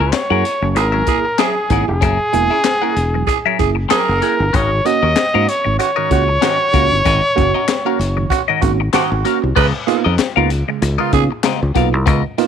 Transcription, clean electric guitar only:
0.00 C#4 G#4 A#4
0.13 muted clean electric guitar stroke
0.30 C#4 G#4 A#4 F#5
0.63 muted clean electric guitar stroke
0.75 muted clean electric guitar stroke
0.92 C#4 G#4 A#4 E5
1.25 muted clean electric guitar stroke
1.38 C#4 G#4 A#4 E5
1.55 muted clean electric guitar stroke
1.71 C#4 G#4 A#4 F#5
1.88 muted clean electric guitar stroke
2.01 C#4 G#4 A#4 E5
2.33 muted clean electric guitar stroke
2.50 C#4 G#4 A#4 E5
2.65 muted clean electric guitar stroke
2.82 C#4 G#4 A#4 F#5
3.14 muted clean electric guitar stroke
3.27 muted clean electric guitar stroke
3.46 C#4 G#4 A#4 E5
3.75 muted clean electric guitar stroke
3.89 C#4 G#4 A#4 E5
4.08 muted clean electric guitar stroke
4.22 C#4 G#4 A#4 F#5
4.39 muted clean electric guitar stroke
4.53 C#4 F#4 A#4 D#5
4.85 muted clean electric guitar stroke
5.03 C#4 F#4 A#4 D#5
5.16 muted clean electric guitar stroke
5.34 C#4 F#4 A#4 F5
5.47 muted clean electric guitar stroke
5.64 muted clean electric guitar stroke
5.79 muted clean electric guitar stroke
5.96 C#4 F#4 A#4 D#5
6.28 muted clean electric guitar stroke
6.41 C#4 F#4 A#4 D#5
6.59 muted clean electric guitar stroke
6.73 C#4 F#4 A#4 F5
6.91 muted clean electric guitar stroke
7.05 C#4 F#4 A#4 D#5
7.36 muted clean electric guitar stroke
7.54 C#4 F#4 A#4 D#5
7.69 muted clean electric guitar stroke
7.86 C#4 F#4 A#4 F5
8.17 muted clean electric guitar stroke
8.31 muted clean electric guitar stroke
8.48 C#4 F#4 A#4 D#5
8.62 muted clean electric guitar stroke
8.80 muted clean electric guitar stroke
8.93 C#4 F#4 A#4 D#5
9.11 muted clean electric guitar stroke
9.25 C#4 F#4 A#4 F5
9.42 muted clean electric guitar stroke
9.56 B3 F4 A#4 D#5
9.88 muted clean electric guitar stroke
10.05 B3 F4 A#4 D#5
10.20 muted clean electric guitar stroke
10.36 B3 F4 A#4 F5
10.69 muted clean electric guitar stroke
10.82 muted clean electric guitar stroke
10.98 B3 F4 A#4 D#5
11.31 muted clean electric guitar stroke
11.44 B3 F4 A#4 D#5
11.75 B3 F4 A#4 F5
11.93 muted clean electric guitar stroke
12.06 B3 F4 A#4 D#5
12.38 muted clean electric guitar stroke

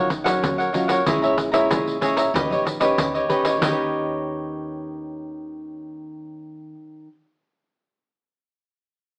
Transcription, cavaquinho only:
0.09 muted cavaquinho stroke
0.24 A#4 C#5 F#5
0.58 A#4 C#5 F#5
0.73 D#4 A#4 C#5 F#5
0.88 A#4 C#5 F#5
1.06 G#4 C#5 E5 A#5
1.22 C#5 E5 A#5
1.37 muted cavaquinho stroke
1.52 C#5 E5 A#5
1.70 G#4 C#5 E5 A#5
2.01 G#4 C#5 E5 A#5
2.17 C#5 E5 A#5
2.34 D#4 G4 C#5 D#5
2.51 G4 C#5 D#5
2.65 muted cavaquinho stroke
2.80 G4 C#5 D#5
3.14 G4 C#5 D#5
3.29 D#4 G4 C#5 D#5
3.45 G4 C#5 D#5
3.62 D#4 G4 C#5 D#5

